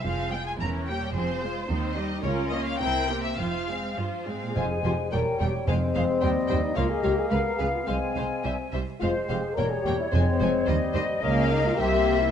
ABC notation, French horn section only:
X:1
M:2/4
L:1/16
Q:1/4=108
K:Fm
V:1 name="French horn section"
z8 | z8 | z8 | z8 |
F A G A B2 G2 | C6- C E | F A G A B2 A F | C6 z2 |
F2 G A B A G =E | C6 z2 | D2 E F G3 =E |]